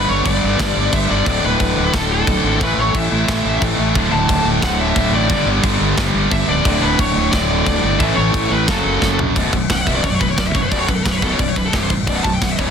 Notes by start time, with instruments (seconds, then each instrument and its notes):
Already playing: distorted electric guitar G2 D3 G3
0.09 fingered electric bass G1, lead electric guitar C#5
0.25 fingered electric bass G1, lead electric guitar D5, kick, crash
0.44 fingered electric bass G1
0.58 fingered electric bass G1, distorted electric guitar G2 D3 G3, kick, snare, crash
0.76 fingered electric bass G1
0.93 fingered electric bass G1, lead electric guitar E5, kick, crash
1.08 fingered electric bass G1, distorted electric guitar G2 D3 G3, lead electric guitar D5
1.25 fingered electric bass D1, distorted electric guitar D2 A2 D3, kick, crash
1.44 fingered electric bass D1, lead electric guitar B4
1.60 fingered electric bass D1, kick, crash
1.77 fingered electric bass D1
1.93 fingered electric bass D1, distorted electric guitar D2 A2 D3, lead electric guitar A4, kick, snare, crash
2.12 lead electric guitar A4
2.27 fingered electric bass D1, kick, crash
2.44 fingered electric bass G#1, distorted electric guitar D2 A2 D3
2.60 fingered electric bass A1, distorted electric guitar A2 E3 A3, lead electric guitar B4, kick, crash
2.77 fingered electric bass A1, lead electric guitar C#5
2.94 fingered electric bass A1, lead electric guitar E5, kick, crash
3.12 fingered electric bass A1
3.28 fingered electric bass A1, distorted electric guitar A2 E3 A3, kick, snare, crash
3.45 fingered electric bass A1
3.62 fingered electric bass A1, kick, crash
3.77 fingered electric bass A1, distorted electric guitar A2 E3 A3
3.95 fingered electric bass D1, distorted electric guitar D2 A2 D3, kick, crash
4.12 fingered electric bass D1, lead electric guitar A5
4.29 fingered electric bass D1, kick, crash
4.45 fingered electric bass D1
4.62 fingered electric bass D1, distorted electric guitar D2 A2 D3, lead electric guitar F#5, kick, snare, crash
4.80 lead electric guitar E5
4.96 fingered electric bass D1, kick, crash
5.11 fingered electric bass A1, distorted electric guitar D2 A2 D3, lead electric guitar D5
5.29 fingered electric bass G1, distorted electric guitar G2 D3 G3, kick, crash
5.46 fingered electric bass G1
5.63 fingered electric bass G1, kick, crash
5.81 fingered electric bass G1
5.97 fingered electric bass G1, distorted electric guitar G2 D3 G3, kick, snare, crash
6.14 fingered electric bass G1
6.31 fingered electric bass G1, lead electric guitar E5, kick, crash
6.48 fingered electric bass C#1, distorted electric guitar G2 D3 G3, lead electric guitar D5
6.64 fingered electric bass D1, distorted electric guitar D2 A2 D3, kick, crash
6.82 fingered electric bass D1, lead electric guitar B4
6.99 fingered electric bass D1, lead electric guitar C#5, kick, crash
7.15 fingered electric bass D1
7.32 fingered electric bass D1, distorted electric guitar D2 A2 D3, lead electric guitar D5, kick, snare, crash
7.66 fingered electric bass D1, lead electric guitar D5, kick, crash
7.83 fingered electric bass G1, distorted electric guitar D2 A2 D3
7.99 fingered electric bass A1, distorted electric guitar A2 E3 A3, lead electric guitar E5, kick, crash
8.15 fingered electric bass A1, lead electric guitar C#5
8.34 fingered electric bass A1, kick, crash
8.51 fingered electric bass A1, lead electric guitar B4
8.67 fingered electric bass F#1, distorted electric guitar F#2 C#3 F#3, lead electric guitar A4, kick, snare, crash
8.85 fingered electric bass F#1
9.02 fingered electric bass F#1, kick, snare
9.19 fingered electric bass A#1, floor tom
9.35 fingered electric bass B0, distorted electric guitar B1 F#2 B2, kick, crash
9.53 fingered electric bass B0, distorted electric guitar B1 F#2, kick, crash
9.70 fingered electric bass B0, distorted electric guitar B1 F#2, lead electric guitar F#5, kick, snare, crash
9.76 lead electric guitar G5
9.81 lead electric guitar F#5
9.86 fingered electric bass B0, distorted electric guitar B1 F#2 B2, lead electric guitar E5, kick, crash
9.95 lead electric guitar D5
10.04 fingered electric bass B0, distorted electric guitar B1 F#2, lead electric guitar C#5, kick, crash
10.10 lead electric guitar D5
10.15 lead electric guitar C#5
10.20 fingered electric bass B0, distorted electric guitar B1 F#2, lead electric guitar B4, kick, crash
10.28 lead electric guitar C#5
10.37 fingered electric bass B0, distorted electric guitar B1 F#2, lead electric guitar D5, kick, snare, crash
10.46 lead electric guitar E5
10.53 fingered electric bass F#1, distorted electric guitar B1 F#2, lead electric guitar C#5, kick, crash
10.63 lead electric guitar B4
10.70 fingered electric bass B0, distorted electric guitar B1 F#2 B2, lead electric guitar D5, kick, crash
10.79 lead electric guitar C#5
10.87 distorted electric guitar B1 F#2, lead electric guitar B4, kick, crash
10.96 lead electric guitar A4
11.05 fingered electric bass B0, distorted electric guitar B1 F#2, lead electric guitar B4, kick, snare, crash
11.11 lead electric guitar C#5
11.17 lead electric guitar B4
11.22 distorted electric guitar B1 F#2 B2, lead electric guitar A4, kick, crash
11.32 lead electric guitar C#5
11.39 fingered electric bass B0, distorted electric guitar B1 F#2, lead electric guitar D5, kick, crash
11.49 lead electric guitar C#5
11.56 fingered electric bass B0, distorted electric guitar B1 F#2, lead electric guitar B4, kick, crash
11.66 lead electric guitar A4
11.73 fingered electric bass C1, distorted electric guitar C2 G2 C3, lead electric guitar G4, kick, snare, crash
11.83 lead electric guitar C5
11.90 fingered electric bass A1, distorted electric guitar C2 G2, kick, crash
12.07 fingered electric bass B0, distorted electric guitar B1 F#2 B2, lead electric guitar D5, kick, crash
12.15 lead electric guitar F#5
12.24 fingered electric bass B0, distorted electric guitar B1 F#2, lead electric guitar A5, kick, crash
12.33 lead electric guitar G5
12.41 fingered electric bass B0, distorted electric guitar B1 F#2, lead electric guitar F#5, kick, snare, crash
12.51 lead electric guitar E5
12.58 fingered electric bass B0, distorted electric guitar B1 F#2 B2, lead electric guitar C#5, kick, crash